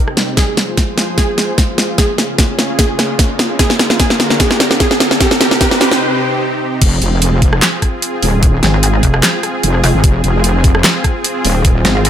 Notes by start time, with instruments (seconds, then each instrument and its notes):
Already playing: supersaw synth C3 C4 D#4 G4, synth pluck A#4
0.08 cross-stick
0.17 snare, closed hi-hat
0.37 supersaw synth F3 F4 G#4 C5, synth pluck G#4, kick, snare, closed hi-hat, riser
0.57 snare, closed hi-hat
0.77 kick, snare, closed hi-hat
0.98 snare, closed hi-hat
1.18 synth pluck G#4, kick, snare, closed hi-hat
1.38 snare, closed hi-hat
1.58 kick, snare, closed hi-hat
1.78 snare, closed hi-hat
1.98 supersaw synth C#3 C#4 G#4, synth pluck G#4, kick, snare, closed hi-hat
2.18 snare, closed hi-hat
2.38 kick, snare, closed hi-hat
2.59 snare, closed hi-hat
2.79 synth pluck G#4, kick, snare, closed hi-hat
2.99 snare, closed hi-hat
3.19 kick, snare, closed hi-hat
3.39 snare, closed hi-hat
3.59 supersaw synth D3 D4 A#4, synth pluck G#4, kick, snare, closed hi-hat
3.70 snare
3.79 snare, closed hi-hat
3.90 snare
4.00 synth pluck G#4, kick, snare, closed hi-hat
4.10 snare
4.20 snare, closed hi-hat
4.30 snare
4.40 synth pluck G#4, kick, snare, closed hi-hat
4.51 snare
4.60 snare, closed hi-hat
4.71 snare
4.80 synth pluck G#4, kick, snare, closed hi-hat
4.91 snare
5.00 snare, closed hi-hat
5.11 snare
5.20 supersaw synth C3 C4 D#4 G4, synth pluck G4, kick, snare, closed hi-hat
5.31 snare
5.41 synth pluck G4, snare, closed hi-hat
5.51 snare
5.61 synth pluck G4, kick, snare, closed hi-hat
5.71 snare
5.81 synth pluck G4, snare, closed hi-hat
5.91 snare
6.81 wobble bass F1, supersaw synth C4 F4 G#4, kick, closed hi-hat, crash
7.02 wobble bass F1, closed hi-hat
7.22 closed hi-hat
7.42 kick, closed hi-hat
7.53 cross-stick
7.62 snare, clap, closed hi-hat
7.82 kick, cross-stick, closed hi-hat
8.02 closed hi-hat
8.23 wobble bass D#1, open hi-hat
8.43 kick, closed hi-hat
8.63 wobble bass G#1, snare, closed hi-hat
8.83 closed hi-hat
9.03 wobble bass F1, kick, closed hi-hat
9.14 cross-stick
9.23 snare, clap, closed hi-hat
9.43 cross-stick, closed hi-hat
9.63 wobble bass F1, closed hi-hat
9.74 cross-stick
9.84 wobble bass F1, open hi-hat
9.94 wobble bass G#1
10.04 wobble bass F1, kick, closed hi-hat
10.24 wobble bass F1, closed hi-hat
10.44 closed hi-hat
10.64 kick, closed hi-hat
10.75 cross-stick
10.84 snare, clap, closed hi-hat
11.04 kick, cross-stick, closed hi-hat
11.24 closed hi-hat
11.45 wobble bass D#1, open hi-hat
11.65 kick, closed hi-hat
11.85 wobble bass G#1, snare, closed hi-hat
12.05 closed hi-hat